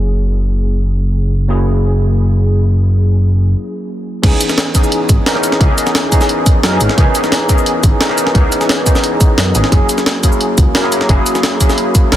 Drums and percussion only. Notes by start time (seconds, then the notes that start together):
4.23 kick, closed hi-hat, crash
4.41 closed hi-hat, cabasa
4.49 snare, cabasa
4.58 snare, closed hi-hat
4.75 kick, closed hi-hat, cabasa
4.84 cabasa
4.92 closed hi-hat
5.09 kick, closed hi-hat, cabasa
5.26 snare, closed hi-hat
5.35 snare
5.43 closed hi-hat, cabasa
5.52 snare
5.61 kick, closed hi-hat
5.78 closed hi-hat, cabasa
5.87 snare, cabasa
5.95 snare, closed hi-hat
6.12 kick, closed hi-hat, cabasa
6.21 snare, cabasa
6.29 closed hi-hat
6.46 kick, closed hi-hat, cabasa
6.63 snare, closed hi-hat
6.81 closed hi-hat, cabasa
6.89 snare
6.98 kick, closed hi-hat
7.15 closed hi-hat, cabasa
7.24 snare, cabasa
7.32 snare, closed hi-hat
7.49 kick, closed hi-hat, cabasa
7.58 cabasa
7.66 closed hi-hat
7.83 kick, closed hi-hat, cabasa
8.01 snare, closed hi-hat
8.09 snare
8.18 closed hi-hat, cabasa
8.27 snare
8.35 kick, closed hi-hat
8.52 closed hi-hat, cabasa
8.61 snare, cabasa
8.69 snare, closed hi-hat
8.86 kick, closed hi-hat, cabasa
8.95 snare, cabasa
9.04 closed hi-hat
9.21 kick, closed hi-hat, cabasa
9.38 snare, closed hi-hat
9.55 closed hi-hat, cabasa
9.64 snare
9.72 kick, closed hi-hat
9.89 closed hi-hat, cabasa
9.98 snare, cabasa
10.06 snare, closed hi-hat
10.23 kick, closed hi-hat, cabasa
10.32 cabasa
10.41 closed hi-hat
10.58 kick, closed hi-hat, cabasa
10.75 snare, closed hi-hat
10.84 snare
10.92 closed hi-hat, cabasa
11.01 snare
11.09 kick, closed hi-hat
11.26 closed hi-hat, cabasa
11.35 snare, cabasa
11.43 snare, closed hi-hat
11.61 kick, closed hi-hat, cabasa
11.70 snare, cabasa
11.78 closed hi-hat
11.95 kick, closed hi-hat, cabasa
12.12 snare, closed hi-hat